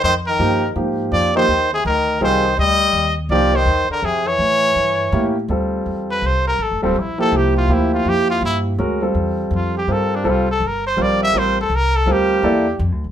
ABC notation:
X:1
M:3/4
L:1/8
Q:"Swing" 1/4=164
K:Fdor
V:1 name="Trumpet"
c B3 z2 | d c2 A B2 | c2 e3 z | d c2 B A _d- |
_d4- d z | [K:Dm] z3 =B c _B | A C E A G F | E F G F E z |
z4 F G | A D F A B c | d e c A B A | G4 z2 |]
V:2 name="Grand piano"
z2 [F,B,EG] z [F,B,EG]2- | [F,B,EG] [F,B,EG] z4 | [G,CFA] z4 z | [F,B,EG] z4 z |
z4 [B,^C=EG] z | [K:Dm] [G,CFA]4- [G,CFA] z | z [G,CFA] z [F,B,EG]3 | [F,B,EG]4- [F,B,EG] z |
[^G,^C^FB] [=G,=C=FA]4 z | [G,CFB]2 [G,CFA] z3 | [G,CFB]2 [G,CFB] z3 | [G,CFB]2 [B,EAd] z3 |]
V:3 name="Trombone" clef=bass
E, E,3 z2 | F, E,2 C, E,2 | E,2 G,3 z | F, E,2 D, C, =E,- |
=E,4- E, z | [K:Dm] z6 | z6 | z6 |
z6 | z6 | z6 | z6 |]
V:4 name="Upright bass" clef=bass
F,,2 G,,2 A,,2 | F,,2 E,,2 D,,2 | C,,2 D,,2 E,,2 | C,,2 E,, z F,,2 |
=A,,2 G,,2 A,,2 | [K:Dm] D,,2 E,,2 C,,2 | (3A,,, F,,, D,,, B,,,2 C,,2 | D,,2 F,,2 G,,2 |
D,,2 E,,2 F,,2 | G,,2 C,,2 G,,,2 | B,,,2 A,,,2 C,,2 | D,,2 E,,2 (3F,, D,, B,,, |]